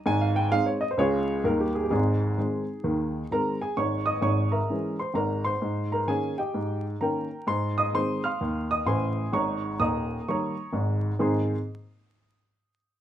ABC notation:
X:1
M:4/4
L:1/16
Q:"Swing" 1/4=129
K:Ab
V:1 name="Grand piano"
a f g2 f d e c [FAd]4 B G A G | [CEA]12 [Bb]2 [Aa]2 | [dd']2 [ee']2 [dd']2 [B_fb]4 [cc']2 [Bb]2 [cc']2- | [cc']2 [Bb]2 [Aa]2 [Geg]4 z2 [Bgb]4 |
[cc']2 [ee']2 [cc']2 [fc'f']4 [ee']2 [cac']4 | [dbd']4 [ebe']4 [dbd']4 z4 | [A,,E,CEAcc']2 z12 z2 |]
V:2 name="Grand piano" clef=bass
[A,,,A,,]4 [A,CE]4 [D,,D,A,]4 [E,,E,G,E]4 | [A,,,A,,]4 [E,A,C]4 [E,,E,]4 [E,A,C]4 | [A,,,A,,]4 [A,,,A,,]4 [_F,A,D]4 [A,,,A,,]4 | A,,4 [E,B,D]4 A,,4 [E,B,D]4 |
A,,4 [E,A,C]4 E,,4 [=A,,,=A,,]4 | [A,,,A,,]4 [E,,,E,,]4 [E,G,B,]4 [A,,,A,,]4 | z16 |]